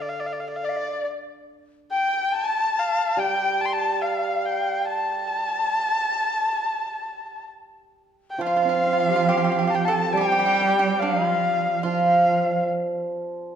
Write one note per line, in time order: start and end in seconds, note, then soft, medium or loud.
0.00 0.64 D3 medium
0.00 0.11 D5 medium
0.09 0.22 F5 medium
0.20 0.28 D5 medium
0.26 0.34 F5 medium
0.33 0.42 D5 medium
0.40 0.50 F5 medium
0.48 0.58 D5 medium
0.56 0.67 F5 medium
0.63 0.71 D5 medium
0.63 1.07 D5 medium
0.69 0.78 F5 medium
0.77 1.07 D5 medium
1.91 2.34 G5 medium
1.91 2.36 G5 medium
2.32 3.20 A5 medium
2.32 2.80 A5 medium
2.79 3.21 F5 medium
3.17 5.75 G3 medium
3.17 3.75 G5 medium
3.17 3.63 G5 medium
3.61 3.67 A5 medium
3.66 3.75 C6 medium
3.73 4.04 A5 medium
3.73 4.03 A5 medium
4.02 4.87 F5 medium
4.02 4.47 F5 medium
4.45 4.87 G5 medium
4.88 7.48 A5 loud
4.88 7.48 A5 medium
8.31 8.44 G5 medium
8.38 11.00 F3 medium
8.38 10.15 F3 medium
8.38 8.45 F4 medium
8.38 9.86 F5 medium
8.38 9.72 F5 medium
8.47 8.55 F4 soft
8.56 8.61 F4 soft
8.62 10.37 C4 soft
8.62 8.68 F4 soft
8.69 8.74 F4 soft
8.75 8.82 F4 soft
8.84 8.92 F4 soft
8.84 10.59 F4 soft
8.93 8.99 F4 soft
9.00 9.08 F4 soft
9.08 9.15 F4 soft
9.08 10.80 G4 soft
9.16 9.23 F4 medium
9.29 9.36 G4 medium
9.29 11.01 C5 soft
9.37 9.43 G4 medium
9.44 9.51 G4 medium
9.52 9.58 G4 soft
9.59 9.66 G4 medium
9.67 9.73 G4 soft
9.67 9.77 A5 medium
9.75 9.81 G4 medium
9.75 9.87 G5 medium
9.85 10.14 A4 medium
9.85 10.14 A5 medium
9.85 10.15 A5 medium
10.13 12.69 G3 medium
10.13 11.02 G3 medium
10.13 10.75 G5 medium
10.13 11.01 G5 medium
10.17 10.20 G4 medium
10.17 10.29 G4 medium
10.32 10.38 G4 medium
10.39 10.45 G4 medium
10.46 10.52 G4 medium
10.55 10.60 G4 medium
10.61 10.67 G4 medium
10.68 10.75 G4 soft
10.76 10.99 G4 medium
10.76 11.01 G5 medium
10.99 11.85 F3 medium
10.99 11.27 D4 medium
10.99 11.83 F5 medium
11.27 11.82 F4 medium
11.83 13.55 F3 medium
11.83 12.66 F3 medium
11.83 12.65 F4 medium
11.83 12.65 F5 medium